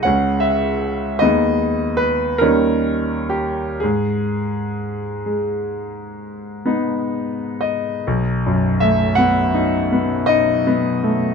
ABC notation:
X:1
M:9/8
L:1/8
Q:3/8=51
K:G#m
V:1 name="Grand piano"
f e2 d2 B A2 =G | G6 z2 d- | d2 e f3 d3 |]
V:2 name="Grand piano"
[C,,G,CG]3 [D,,G,B,D]3 [D,,=G,CD]3 | G,,3 G,3 [B,D]3 | B,,, F,, =A, B, D B, D B, A, |]